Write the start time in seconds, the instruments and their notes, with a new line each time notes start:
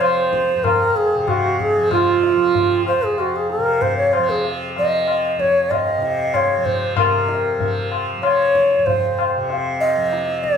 Already playing: tanpura F2 C3 F3
0.01 bansuri C5, tabla na
0.33 tabla ke
0.56 tanpura F2
0.64 bansuri A#4, tabla na, tabla ge
0.96 bansuri G#4, tabla ge
1.15 tanpura C3
1.28 bansuri F#4, tabla na, tabla ge
1.59 bansuri G#4, tabla ge
1.77 tanpura F3
1.91 bansuri F4, tabla na, tabla ge
2.23 tabla te
2.37 tanpura F3
2.55 tabla tin, tabla ge
2.86 bansuri C5, tabla na
2.98 tanpura F2
3.03 bansuri G#4
3.18 bansuri F#4, tabla na
3.36 bansuri G#4
3.50 bansuri A#4, tabla te
3.58 tanpura C3
3.81 bansuri C5, tabla tin, tabla ge
3.97 bansuri C#5
4.13 bansuri C5, tabla na
4.18 tanpura F3
4.29 bansuri G#4, tabla ke
4.45 tabla tin
4.76 tanpura F3, bansuri D#5, tabla na
5.08 tabla na
5.37 tanpura F2, bansuri C#5, tabla ke
5.71 bansuri D#5, tabla na, tabla ge
5.98 tanpura C3
6.02 tabla te
6.34 bansuri C#5, tabla na, tabla ge
6.57 tanpura F3
6.65 bansuri C5, tabla ge
6.97 tanpura C3, bansuri A#4, tabla na, tabla ge
7.28 tabla te
7.58 tanpura F3, tabla tin, tabla ge
7.92 tabla na
8.18 tanpura F3
8.22 bansuri C#5, tabla na
8.55 tabla ke
8.71 tabla te
8.78 tanpura F2
8.86 bansuri C5, tabla tin, tabla ge
9.19 tabla na
9.37 tanpura C3
9.50 tabla tin
9.80 bansuri D#5, tabla na
9.97 tanpura F3
10.13 tabla te
10.28 tabla te
10.43 bansuri C#5, tabla ke